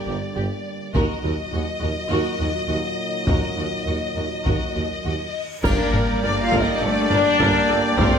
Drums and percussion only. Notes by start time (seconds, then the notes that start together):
0.95 taiko
3.27 taiko
4.46 taiko
5.64 concert bass drum, taiko, crash
5.94 taiko low-mid
6.52 taiko
7.10 taiko low-mid
7.40 taiko
7.98 taiko